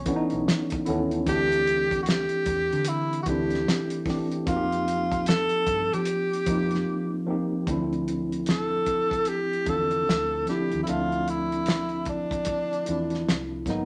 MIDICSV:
0, 0, Header, 1, 5, 480
1, 0, Start_track
1, 0, Tempo, 800000
1, 762, Time_signature, 4, 2, 24, 8
1, 8311, End_track
2, 0, Start_track
2, 0, Title_t, "Tenor saxophone"
2, 0, Program_c, 0, 66
2, 0, Note_on_c, 0, 61, 88
2, 502, Note_off_c, 0, 61, 0
2, 772, Note_on_c, 0, 67, 113
2, 1192, Note_off_c, 0, 67, 0
2, 1215, Note_on_c, 0, 66, 74
2, 1251, Note_on_c, 0, 67, 100
2, 1260, Note_off_c, 0, 66, 0
2, 1728, Note_on_c, 0, 64, 97
2, 1737, Note_off_c, 0, 67, 0
2, 1934, Note_off_c, 0, 64, 0
2, 1937, Note_on_c, 0, 66, 69
2, 1970, Note_on_c, 0, 67, 94
2, 1979, Note_off_c, 0, 66, 0
2, 2446, Note_off_c, 0, 67, 0
2, 2690, Note_on_c, 0, 65, 95
2, 3142, Note_off_c, 0, 65, 0
2, 3167, Note_on_c, 0, 69, 105
2, 3562, Note_on_c, 0, 67, 92
2, 3571, Note_off_c, 0, 69, 0
2, 4367, Note_off_c, 0, 67, 0
2, 5097, Note_on_c, 0, 69, 91
2, 5573, Note_on_c, 0, 67, 101
2, 5582, Note_off_c, 0, 69, 0
2, 5815, Note_on_c, 0, 69, 90
2, 5824, Note_off_c, 0, 67, 0
2, 6289, Note_off_c, 0, 69, 0
2, 6295, Note_on_c, 0, 67, 83
2, 6483, Note_off_c, 0, 67, 0
2, 6500, Note_on_c, 0, 64, 65
2, 6533, Note_on_c, 0, 65, 94
2, 6542, Note_off_c, 0, 64, 0
2, 6777, Note_on_c, 0, 64, 90
2, 6786, Note_off_c, 0, 65, 0
2, 7250, Note_off_c, 0, 64, 0
2, 7255, Note_on_c, 0, 62, 85
2, 8184, Note_off_c, 0, 62, 0
2, 8311, End_track
3, 0, Start_track
3, 0, Title_t, "Tine electric piano"
3, 0, Program_c, 1, 4
3, 0, Control_c, 1, 64, 127
3, 33, Note_on_c, 1, 52, 86
3, 39, Note_on_c, 1, 57, 77
3, 46, Note_on_c, 1, 59, 75
3, 51, Note_on_c, 1, 61, 73
3, 58, Note_on_c, 1, 62, 77
3, 96, Note_on_c, 1, 63, 96
3, 99, Note_off_c, 1, 62, 0
3, 488, Note_off_c, 1, 52, 0
3, 491, Note_off_c, 1, 57, 0
3, 494, Note_off_c, 1, 59, 0
3, 497, Note_off_c, 1, 61, 0
3, 512, Note_on_c, 1, 64, 88
3, 519, Note_on_c, 1, 57, 79
3, 520, Note_off_c, 1, 63, 0
3, 525, Note_on_c, 1, 59, 74
3, 531, Note_on_c, 1, 61, 77
3, 538, Note_on_c, 1, 69, 82
3, 742, Note_off_c, 1, 64, 0
3, 746, Note_off_c, 1, 57, 0
3, 748, Note_off_c, 1, 59, 0
3, 752, Note_off_c, 1, 61, 0
3, 752, Note_on_c, 1, 52, 77
3, 755, Note_off_c, 1, 69, 0
3, 758, Note_on_c, 1, 57, 73
3, 765, Note_on_c, 1, 60, 72
3, 769, Control_c, 1, 64, 0
3, 770, Note_on_c, 1, 62, 76
3, 776, Note_on_c, 1, 66, 69
3, 816, Note_on_c, 1, 67, 88
3, 818, Note_off_c, 1, 66, 0
3, 862, Control_c, 1, 64, 127
3, 1658, Note_off_c, 1, 52, 0
3, 1661, Note_off_c, 1, 57, 0
3, 1664, Note_off_c, 1, 60, 0
3, 1667, Note_off_c, 1, 62, 0
3, 1690, Note_off_c, 1, 67, 0
3, 1956, Note_on_c, 1, 52, 70
3, 1963, Note_on_c, 1, 57, 68
3, 1969, Note_on_c, 1, 60, 64
3, 1975, Note_on_c, 1, 62, 72
3, 1981, Note_on_c, 1, 64, 73
3, 2409, Note_off_c, 1, 52, 0
3, 2413, Note_off_c, 1, 57, 0
3, 2416, Note_off_c, 1, 60, 0
3, 2419, Note_off_c, 1, 62, 0
3, 2422, Note_off_c, 1, 64, 0
3, 2433, Note_on_c, 1, 52, 66
3, 2439, Note_on_c, 1, 57, 61
3, 2448, Note_on_c, 1, 60, 59
3, 2453, Note_on_c, 1, 62, 65
3, 2459, Note_on_c, 1, 67, 81
3, 2663, Note_off_c, 1, 52, 0
3, 2666, Note_off_c, 1, 57, 0
3, 2670, Note_off_c, 1, 60, 0
3, 2673, Note_off_c, 1, 62, 0
3, 2676, Note_off_c, 1, 67, 0
3, 2676, Note_on_c, 1, 53, 80
3, 2681, Note_on_c, 1, 58, 70
3, 2688, Note_on_c, 1, 60, 68
3, 2690, Control_c, 1, 64, 0
3, 2693, Note_on_c, 1, 63, 68
3, 2700, Note_on_c, 1, 66, 68
3, 2739, Note_on_c, 1, 67, 82
3, 2740, Note_off_c, 1, 66, 0
3, 2781, Control_c, 1, 64, 127
3, 3580, Note_off_c, 1, 53, 0
3, 3582, Note_off_c, 1, 58, 0
3, 3586, Note_off_c, 1, 60, 0
3, 3588, Note_off_c, 1, 63, 0
3, 3611, Note_off_c, 1, 67, 0
3, 3877, Note_on_c, 1, 53, 75
3, 3882, Note_on_c, 1, 58, 59
3, 3889, Note_on_c, 1, 60, 62
3, 3897, Note_on_c, 1, 63, 68
3, 3902, Note_on_c, 1, 65, 74
3, 4330, Note_off_c, 1, 53, 0
3, 4332, Note_off_c, 1, 58, 0
3, 4336, Note_off_c, 1, 60, 0
3, 4340, Note_off_c, 1, 63, 0
3, 4342, Note_off_c, 1, 65, 0
3, 4358, Note_on_c, 1, 53, 76
3, 4362, Note_on_c, 1, 58, 67
3, 4369, Note_on_c, 1, 60, 75
3, 4377, Note_on_c, 1, 63, 63
3, 4382, Note_on_c, 1, 67, 78
3, 4585, Note_off_c, 1, 53, 0
3, 4587, Note_off_c, 1, 58, 0
3, 4591, Note_off_c, 1, 60, 0
3, 4595, Note_off_c, 1, 63, 0
3, 4595, Note_on_c, 1, 52, 66
3, 4597, Note_off_c, 1, 67, 0
3, 4603, Note_on_c, 1, 57, 73
3, 4609, Note_on_c, 1, 60, 76
3, 4610, Control_c, 1, 64, 0
3, 4616, Note_on_c, 1, 62, 69
3, 4623, Note_on_c, 1, 64, 92
3, 4636, Note_on_c, 1, 53, 77
3, 4647, Note_off_c, 1, 52, 0
3, 4728, Control_c, 1, 64, 127
3, 5503, Note_off_c, 1, 57, 0
3, 5506, Note_off_c, 1, 60, 0
3, 5510, Note_off_c, 1, 62, 0
3, 5513, Note_off_c, 1, 64, 0
3, 5520, Note_off_c, 1, 53, 0
3, 5794, Note_on_c, 1, 50, 56
3, 5800, Note_on_c, 1, 57, 52
3, 5805, Note_on_c, 1, 60, 56
3, 5813, Note_on_c, 1, 62, 56
3, 5818, Note_on_c, 1, 65, 69
3, 6248, Note_off_c, 1, 50, 0
3, 6251, Note_off_c, 1, 57, 0
3, 6254, Note_off_c, 1, 60, 0
3, 6258, Note_off_c, 1, 62, 0
3, 6260, Note_off_c, 1, 65, 0
3, 6275, Note_on_c, 1, 53, 69
3, 6282, Note_on_c, 1, 57, 62
3, 6288, Note_on_c, 1, 60, 60
3, 6292, Note_on_c, 1, 62, 57
3, 6301, Note_on_c, 1, 64, 77
3, 6504, Note_off_c, 1, 53, 0
3, 6507, Note_off_c, 1, 57, 0
3, 6510, Note_off_c, 1, 60, 0
3, 6512, Note_off_c, 1, 62, 0
3, 6513, Note_on_c, 1, 53, 63
3, 6517, Note_off_c, 1, 64, 0
3, 6519, Note_on_c, 1, 57, 61
3, 6526, Note_on_c, 1, 60, 61
3, 6534, Note_on_c, 1, 62, 66
3, 6539, Note_on_c, 1, 76, 81
3, 7418, Note_off_c, 1, 53, 0
3, 7421, Note_off_c, 1, 57, 0
3, 7425, Note_off_c, 1, 60, 0
3, 7429, Note_off_c, 1, 62, 0
3, 7431, Note_off_c, 1, 76, 0
3, 7714, Note_on_c, 1, 65, 56
3, 7720, Note_on_c, 1, 57, 54
3, 7728, Note_on_c, 1, 60, 54
3, 7732, Note_on_c, 1, 62, 56
3, 7739, Note_on_c, 1, 64, 65
3, 8168, Note_off_c, 1, 65, 0
3, 8171, Note_off_c, 1, 57, 0
3, 8175, Note_off_c, 1, 60, 0
3, 8177, Note_off_c, 1, 62, 0
3, 8181, Note_off_c, 1, 64, 0
3, 8195, Note_on_c, 1, 54, 75
3, 8200, Note_on_c, 1, 56, 74
3, 8207, Note_on_c, 1, 58, 76
3, 8210, Control_c, 1, 64, 0
3, 8215, Note_on_c, 1, 59, 77
3, 8220, Note_on_c, 1, 63, 96
3, 8307, Control_c, 1, 64, 127
3, 8311, Note_off_c, 1, 54, 0
3, 8311, Note_off_c, 1, 56, 0
3, 8311, Note_off_c, 1, 58, 0
3, 8311, Note_off_c, 1, 59, 0
3, 8311, Note_off_c, 1, 63, 0
3, 8311, End_track
4, 0, Start_track
4, 0, Title_t, "Fingered electric bass"
4, 0, Program_c, 2, 33
4, 198, Note_on_c, 2, 35, 91
4, 277, Note_off_c, 2, 35, 0
4, 527, Note_on_c, 2, 39, 83
4, 744, Note_off_c, 2, 39, 0
4, 762, Note_on_c, 2, 38, 94
4, 1368, Note_off_c, 2, 38, 0
4, 1480, Note_on_c, 2, 40, 106
4, 1618, Note_off_c, 2, 40, 0
4, 1637, Note_on_c, 2, 50, 97
4, 1961, Note_on_c, 2, 38, 81
4, 1970, Note_off_c, 2, 50, 0
4, 2181, Note_off_c, 2, 38, 0
4, 2683, Note_on_c, 2, 41, 94
4, 3289, Note_off_c, 2, 41, 0
4, 3404, Note_on_c, 2, 43, 90
4, 3540, Note_off_c, 2, 43, 0
4, 3562, Note_on_c, 2, 53, 89
4, 3863, Note_off_c, 2, 53, 0
4, 3884, Note_on_c, 2, 41, 91
4, 4102, Note_off_c, 2, 41, 0
4, 4605, Note_on_c, 2, 38, 96
4, 5780, Note_off_c, 2, 38, 0
4, 5802, Note_on_c, 2, 40, 75
4, 6021, Note_off_c, 2, 40, 0
4, 6049, Note_on_c, 2, 38, 86
4, 6265, Note_off_c, 2, 38, 0
4, 6440, Note_on_c, 2, 39, 84
4, 6519, Note_off_c, 2, 39, 0
4, 6530, Note_on_c, 2, 38, 104
4, 7702, Note_off_c, 2, 38, 0
4, 7729, Note_on_c, 2, 40, 84
4, 7945, Note_off_c, 2, 40, 0
4, 7969, Note_on_c, 2, 36, 96
4, 8185, Note_off_c, 2, 36, 0
4, 8199, Note_on_c, 2, 32, 87
4, 8311, Note_off_c, 2, 32, 0
4, 8311, End_track
5, 0, Start_track
5, 0, Title_t, "Drums"
5, 34, Note_on_c, 9, 42, 62
5, 36, Note_on_c, 9, 36, 93
5, 94, Note_off_c, 9, 42, 0
5, 96, Note_off_c, 9, 36, 0
5, 180, Note_on_c, 9, 42, 41
5, 240, Note_off_c, 9, 42, 0
5, 289, Note_on_c, 9, 38, 111
5, 292, Note_on_c, 9, 42, 93
5, 349, Note_off_c, 9, 38, 0
5, 352, Note_off_c, 9, 42, 0
5, 421, Note_on_c, 9, 42, 58
5, 434, Note_on_c, 9, 36, 101
5, 481, Note_off_c, 9, 42, 0
5, 494, Note_off_c, 9, 36, 0
5, 518, Note_on_c, 9, 42, 57
5, 578, Note_off_c, 9, 42, 0
5, 668, Note_on_c, 9, 42, 39
5, 728, Note_off_c, 9, 42, 0
5, 759, Note_on_c, 9, 36, 107
5, 760, Note_on_c, 9, 42, 85
5, 819, Note_off_c, 9, 36, 0
5, 820, Note_off_c, 9, 42, 0
5, 913, Note_on_c, 9, 42, 50
5, 973, Note_off_c, 9, 42, 0
5, 1005, Note_on_c, 9, 42, 71
5, 1065, Note_off_c, 9, 42, 0
5, 1148, Note_on_c, 9, 36, 90
5, 1153, Note_on_c, 9, 42, 45
5, 1208, Note_off_c, 9, 36, 0
5, 1213, Note_off_c, 9, 42, 0
5, 1237, Note_on_c, 9, 42, 78
5, 1252, Note_on_c, 9, 38, 112
5, 1297, Note_off_c, 9, 42, 0
5, 1312, Note_off_c, 9, 38, 0
5, 1374, Note_on_c, 9, 42, 44
5, 1434, Note_off_c, 9, 42, 0
5, 1474, Note_on_c, 9, 42, 70
5, 1477, Note_on_c, 9, 36, 86
5, 1534, Note_off_c, 9, 42, 0
5, 1537, Note_off_c, 9, 36, 0
5, 1635, Note_on_c, 9, 42, 47
5, 1695, Note_off_c, 9, 42, 0
5, 1707, Note_on_c, 9, 42, 93
5, 1767, Note_off_c, 9, 42, 0
5, 1877, Note_on_c, 9, 42, 45
5, 1937, Note_off_c, 9, 42, 0
5, 1955, Note_on_c, 9, 42, 62
5, 1958, Note_on_c, 9, 36, 93
5, 2015, Note_off_c, 9, 42, 0
5, 2018, Note_off_c, 9, 36, 0
5, 2103, Note_on_c, 9, 42, 39
5, 2124, Note_on_c, 9, 38, 34
5, 2163, Note_off_c, 9, 42, 0
5, 2184, Note_off_c, 9, 38, 0
5, 2210, Note_on_c, 9, 38, 127
5, 2213, Note_on_c, 9, 42, 82
5, 2270, Note_off_c, 9, 38, 0
5, 2273, Note_off_c, 9, 42, 0
5, 2342, Note_on_c, 9, 42, 62
5, 2402, Note_off_c, 9, 42, 0
5, 2434, Note_on_c, 9, 36, 93
5, 2438, Note_on_c, 9, 46, 36
5, 2449, Note_on_c, 9, 38, 35
5, 2494, Note_off_c, 9, 36, 0
5, 2498, Note_off_c, 9, 46, 0
5, 2509, Note_off_c, 9, 38, 0
5, 2589, Note_on_c, 9, 42, 45
5, 2649, Note_off_c, 9, 42, 0
5, 2681, Note_on_c, 9, 36, 117
5, 2681, Note_on_c, 9, 42, 79
5, 2741, Note_off_c, 9, 36, 0
5, 2741, Note_off_c, 9, 42, 0
5, 2834, Note_on_c, 9, 42, 46
5, 2894, Note_off_c, 9, 42, 0
5, 2927, Note_on_c, 9, 42, 68
5, 2987, Note_off_c, 9, 42, 0
5, 3069, Note_on_c, 9, 36, 95
5, 3074, Note_on_c, 9, 42, 47
5, 3129, Note_off_c, 9, 36, 0
5, 3134, Note_off_c, 9, 42, 0
5, 3158, Note_on_c, 9, 42, 85
5, 3173, Note_on_c, 9, 38, 116
5, 3218, Note_off_c, 9, 42, 0
5, 3233, Note_off_c, 9, 38, 0
5, 3296, Note_on_c, 9, 42, 44
5, 3356, Note_off_c, 9, 42, 0
5, 3399, Note_on_c, 9, 42, 63
5, 3400, Note_on_c, 9, 36, 96
5, 3459, Note_off_c, 9, 42, 0
5, 3460, Note_off_c, 9, 36, 0
5, 3560, Note_on_c, 9, 42, 51
5, 3620, Note_off_c, 9, 42, 0
5, 3632, Note_on_c, 9, 42, 85
5, 3692, Note_off_c, 9, 42, 0
5, 3800, Note_on_c, 9, 42, 51
5, 3860, Note_off_c, 9, 42, 0
5, 3878, Note_on_c, 9, 42, 64
5, 3879, Note_on_c, 9, 36, 91
5, 3938, Note_off_c, 9, 42, 0
5, 3939, Note_off_c, 9, 36, 0
5, 4024, Note_on_c, 9, 42, 42
5, 4045, Note_on_c, 9, 38, 38
5, 4084, Note_off_c, 9, 42, 0
5, 4105, Note_off_c, 9, 38, 0
5, 4602, Note_on_c, 9, 36, 97
5, 4604, Note_on_c, 9, 42, 77
5, 4662, Note_off_c, 9, 36, 0
5, 4664, Note_off_c, 9, 42, 0
5, 4756, Note_on_c, 9, 42, 29
5, 4816, Note_off_c, 9, 42, 0
5, 4847, Note_on_c, 9, 42, 61
5, 4907, Note_off_c, 9, 42, 0
5, 4994, Note_on_c, 9, 42, 41
5, 5054, Note_off_c, 9, 42, 0
5, 5077, Note_on_c, 9, 42, 69
5, 5092, Note_on_c, 9, 38, 96
5, 5137, Note_off_c, 9, 42, 0
5, 5152, Note_off_c, 9, 38, 0
5, 5318, Note_on_c, 9, 42, 58
5, 5319, Note_on_c, 9, 36, 83
5, 5378, Note_off_c, 9, 42, 0
5, 5379, Note_off_c, 9, 36, 0
5, 5467, Note_on_c, 9, 36, 86
5, 5478, Note_on_c, 9, 42, 44
5, 5527, Note_off_c, 9, 36, 0
5, 5538, Note_off_c, 9, 42, 0
5, 5551, Note_on_c, 9, 42, 77
5, 5611, Note_off_c, 9, 42, 0
5, 5719, Note_on_c, 9, 42, 32
5, 5779, Note_off_c, 9, 42, 0
5, 5798, Note_on_c, 9, 42, 56
5, 5799, Note_on_c, 9, 36, 89
5, 5858, Note_off_c, 9, 42, 0
5, 5859, Note_off_c, 9, 36, 0
5, 5945, Note_on_c, 9, 42, 36
5, 6005, Note_off_c, 9, 42, 0
5, 6056, Note_on_c, 9, 38, 107
5, 6058, Note_on_c, 9, 42, 79
5, 6115, Note_off_c, 9, 38, 0
5, 6118, Note_off_c, 9, 42, 0
5, 6282, Note_on_c, 9, 42, 49
5, 6292, Note_on_c, 9, 38, 29
5, 6342, Note_off_c, 9, 42, 0
5, 6352, Note_off_c, 9, 38, 0
5, 6430, Note_on_c, 9, 42, 41
5, 6490, Note_off_c, 9, 42, 0
5, 6522, Note_on_c, 9, 42, 78
5, 6582, Note_off_c, 9, 42, 0
5, 6674, Note_on_c, 9, 42, 30
5, 6734, Note_off_c, 9, 42, 0
5, 6766, Note_on_c, 9, 42, 62
5, 6826, Note_off_c, 9, 42, 0
5, 6914, Note_on_c, 9, 42, 42
5, 6974, Note_off_c, 9, 42, 0
5, 6996, Note_on_c, 9, 42, 78
5, 7011, Note_on_c, 9, 38, 105
5, 7056, Note_off_c, 9, 42, 0
5, 7071, Note_off_c, 9, 38, 0
5, 7133, Note_on_c, 9, 42, 28
5, 7193, Note_off_c, 9, 42, 0
5, 7233, Note_on_c, 9, 42, 54
5, 7238, Note_on_c, 9, 36, 86
5, 7293, Note_off_c, 9, 42, 0
5, 7298, Note_off_c, 9, 36, 0
5, 7386, Note_on_c, 9, 36, 90
5, 7394, Note_on_c, 9, 42, 46
5, 7446, Note_off_c, 9, 36, 0
5, 7454, Note_off_c, 9, 42, 0
5, 7469, Note_on_c, 9, 42, 85
5, 7480, Note_on_c, 9, 36, 80
5, 7529, Note_off_c, 9, 42, 0
5, 7540, Note_off_c, 9, 36, 0
5, 7637, Note_on_c, 9, 42, 32
5, 7697, Note_off_c, 9, 42, 0
5, 7718, Note_on_c, 9, 42, 57
5, 7778, Note_off_c, 9, 42, 0
5, 7862, Note_on_c, 9, 42, 36
5, 7883, Note_on_c, 9, 38, 31
5, 7922, Note_off_c, 9, 42, 0
5, 7943, Note_off_c, 9, 38, 0
5, 7971, Note_on_c, 9, 38, 107
5, 7974, Note_on_c, 9, 42, 83
5, 8031, Note_off_c, 9, 38, 0
5, 8034, Note_off_c, 9, 42, 0
5, 8195, Note_on_c, 9, 36, 87
5, 8199, Note_on_c, 9, 42, 52
5, 8210, Note_on_c, 9, 38, 33
5, 8255, Note_off_c, 9, 36, 0
5, 8259, Note_off_c, 9, 42, 0
5, 8270, Note_off_c, 9, 38, 0
5, 8311, End_track
0, 0, End_of_file